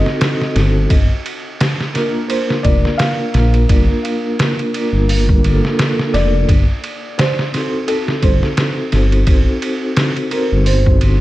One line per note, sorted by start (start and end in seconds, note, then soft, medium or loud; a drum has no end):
0.00 0.92 C4 medium
0.00 0.92 D#4 medium
0.00 0.92 F#4 medium
0.00 0.92 A4 medium
0.00 0.92 C5 medium
0.00 0.51 D#5 loud
0.06 snare soft
0.21 snare loud
0.21 ride medium
0.42 snare soft
0.56 0.87 G1 medium
0.56 snare soft
0.56 ride medium
0.90 1.08 G1 medium
0.90 kick loud
0.90 ride medium
1.26 ride medium
1.60 snare loud
1.60 ride medium
1.81 snare soft
1.93 3.30 A#3 medium
1.93 3.31 D4 medium
1.93 3.32 F4 medium
1.93 2.30 A#4 medium
1.93 snare soft
1.93 ride medium
1.98 3.33 A#4 medium
2.28 2.65 C5 medium
2.28 ride medium
2.50 snare soft
2.63 2.82 F1 medium
2.63 3.00 D5 medium
2.63 kick medium
2.63 ride medium
2.85 snare soft
2.98 3.49 F5 medium
2.98 snare loud
2.98 ride medium
3.33 3.66 A#1 medium
3.33 4.69 A#3 medium
3.33 4.70 D4 medium
3.33 4.71 F4 medium
3.33 snare soft
3.33 ride medium
3.38 4.72 A#4 medium
3.54 ride soft
3.69 3.87 G1 loud
3.69 kick loud
3.69 ride medium
4.05 ride medium
4.39 snare loud
4.39 ride medium
4.59 ride soft
4.74 5.40 A#3 medium
4.74 5.41 D4 medium
4.74 5.41 F4 medium
4.74 5.42 A#4 medium
4.74 ride medium
4.93 5.40 G1 medium
5.09 open hi-hat medium
5.29 kick medium
5.43 5.61 G1 medium
5.43 5.61 A#3 medium
5.43 5.61 D4 medium
5.43 5.62 F4 medium
5.43 5.62 A4 medium
5.43 ride medium
5.65 snare soft
5.79 snare loud
5.79 ride medium
5.99 snare soft
6.14 6.45 F1 medium
6.14 7.14 D5 loud
6.14 snare soft
6.14 ride medium
6.49 6.66 G1 medium
6.49 kick loud
6.49 ride medium
6.84 ride medium
7.18 7.90 C5 medium
7.18 snare loud
7.18 ride medium
7.39 snare soft
7.52 8.88 C4 medium
7.52 8.89 D#4 medium
7.52 8.90 F#4 medium
7.52 snare soft
7.52 ride medium
7.56 8.91 A4 loud
7.88 8.24 A4 medium
7.88 ride medium
8.08 snare soft
8.22 8.40 G1 medium
8.22 8.88 C5 medium
8.22 kick medium
8.22 ride medium
8.43 snare soft
8.57 snare loud
8.57 ride medium
8.91 9.24 G1 medium
8.91 10.28 C4 medium
8.91 10.28 D#4 medium
8.91 10.29 F#4 medium
8.91 snare soft
8.91 ride medium
8.96 10.30 C5 medium
9.12 ride soft
9.27 9.45 G1 loud
9.27 kick loud
9.27 ride medium
9.62 ride medium
9.97 snare loud
9.97 ride medium
10.16 ride soft
10.31 10.98 C4 medium
10.31 10.98 D#4 medium
10.31 10.99 F#4 medium
10.31 10.67 A#4 medium
10.31 10.99 C5 medium
10.31 ride medium
10.52 10.99 G1 medium
10.65 11.21 C5 medium
10.65 open hi-hat medium
10.86 kick medium
11.01 11.20 G1 medium
11.01 ride medium